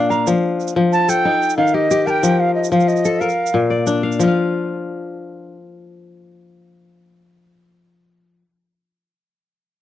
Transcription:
0.00 0.32 A#2 medium
0.00 1.31 D4 medium
0.00 0.57 A#4 medium
0.00 0.89 D5 medium
0.00 0.11 F5 medium
0.10 1.10 F5 medium
0.10 0.27 A#5 medium
0.10 shaker soft
0.27 0.75 F3 medium
0.27 shaker medium
0.60 shaker soft
0.68 shaker medium
0.76 1.30 F3 medium
0.92 1.11 A5 loud
0.92 shaker soft
1.09 2.13 A4 medium
1.09 1.57 G5 medium
1.09 shaker medium
1.25 2.87 D#4 medium
1.42 shaker soft
1.50 shaker medium
1.57 2.28 D#3 medium
1.57 1.76 F5 medium
1.67 shaker soft
1.74 1.90 G4 medium
1.74 2.08 D#5 medium
1.91 3.32 G4 medium
1.91 shaker medium
2.07 3.11 A#4 medium
2.07 2.41 G5 medium
2.07 2.11 A5 medium
2.07 shaker soft
2.23 2.71 F3 medium
2.23 shaker medium
2.40 2.54 F5 medium
2.55 2.70 D#5 medium
2.64 shaker medium
2.72 3.26 F3 medium
2.72 2.90 F5 medium
2.72 shaker soft
2.80 shaker soft
2.88 3.21 D#5 medium
2.88 shaker soft
2.96 shaker soft
3.05 3.27 A4 medium
3.05 shaker medium
3.20 4.48 A#4 medium
3.20 3.86 F5 medium
3.20 shaker soft
3.29 shaker soft
3.46 shaker medium
3.54 4.24 A#2 medium
3.70 4.81 D5 medium
3.87 5.55 D4 medium
3.87 shaker medium
4.03 4.27 F5 medium
4.12 shaker soft
4.19 8.41 F3 medium
4.19 8.44 F4 medium
4.19 shaker medium
4.28 8.49 F5 medium

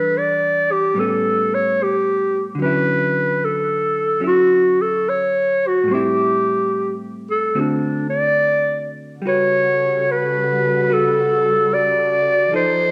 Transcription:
0.00 0.93 E3 soft
0.00 0.94 G3 soft
0.00 0.96 D4 soft
0.00 0.19 B4 medium
0.18 0.73 D5 medium
0.72 1.01 G4 medium
0.94 2.58 A2 soft
0.94 2.58 G3 soft
0.94 2.59 B3 soft
1.00 2.60 C#4 soft
1.00 1.56 A4 medium
1.54 1.85 C#5 medium
1.83 2.43 G4 medium
2.55 5.86 D3 soft
2.55 4.19 F#3 soft
2.62 4.20 C#4 soft
2.62 4.22 E4 soft
2.62 3.46 B4 medium
3.45 4.24 A4 medium
4.20 5.86 F#3 soft
4.20 5.87 C#4 soft
4.20 5.88 E4 soft
4.27 4.83 F#4 medium
4.82 5.11 A4 medium
5.09 5.69 C#5 medium
5.68 5.94 F#4 medium
5.84 7.52 A2 soft
5.88 7.54 G3 soft
5.88 7.54 C4 soft
5.93 7.55 E4 medium
5.93 6.92 G4 medium
7.31 7.61 A4 medium
7.55 9.22 D3 soft
7.55 9.21 A3 soft
7.55 9.23 C4 soft
7.55 9.23 F#4 soft
7.60 8.09 D4 medium
8.10 8.90 D5 medium
9.19 12.48 C#3 medium
9.19 12.48 G3 medium
9.19 12.52 G3 soft
9.19 12.48 F#4 medium
9.19 12.48 A4 soft
9.26 10.89 F#4 soft
9.26 10.91 B4 soft
9.26 10.13 C#5 medium
10.11 10.95 B4 medium
10.90 12.53 F#4 soft
10.90 11.75 A4 medium
10.90 12.53 B4 soft
11.74 12.54 D5 medium
12.52 12.91 F3 soft
12.52 12.91 F3 medium
12.52 12.91 D#4 medium
12.52 12.91 D#4 soft
12.52 12.91 A4 soft
12.52 12.91 A4 medium
12.52 12.91 C5 medium

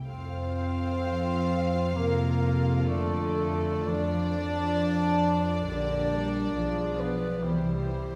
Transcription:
0.05 5.63 F2 medium
0.05 1.98 C4 medium
0.05 1.92 C4 medium
0.05 5.64 F4 medium
0.05 5.64 A4 medium
0.05 1.91 C5 medium
0.05 1.92 C5 medium
0.05 2.83 F5 medium
1.03 1.92 F3 medium
1.96 2.85 C3 medium
1.96 2.87 A#3 medium
1.96 2.87 A#4 medium
1.96 2.85 A#4 medium
2.86 3.88 D3 medium
2.86 3.86 A3 medium
2.86 3.90 A3 medium
2.86 3.88 A4 medium
2.86 7.41 D5 medium
3.88 4.35 F3 medium
3.88 5.64 D4 loud
3.88 5.67 D4 medium
3.88 5.66 D5 medium
3.88 5.40 D5 medium
4.36 5.65 F3 medium
5.67 6.53 A#1 medium
5.67 6.10 D3 medium
5.67 7.01 D4 medium
5.67 6.97 D4 loud
5.67 6.51 G4 medium
5.67 6.51 A#4 medium
5.67 6.96 D5 medium
5.67 6.97 D5 medium
6.12 6.55 G3 medium
6.55 7.42 B1 medium
6.55 7.44 F3 medium
6.55 7.41 F4 medium
6.55 7.41 G#4 medium
6.99 7.45 B3 medium
6.99 7.44 B4 medium
6.99 7.45 B4 medium
7.43 8.15 C2 soft
7.43 8.15 E3 medium
7.43 8.10 G3 medium
7.43 8.15 G3 medium
7.43 8.15 E4 soft
7.43 8.15 G4 soft
7.43 8.15 G4 medium
7.43 8.15 C5 medium

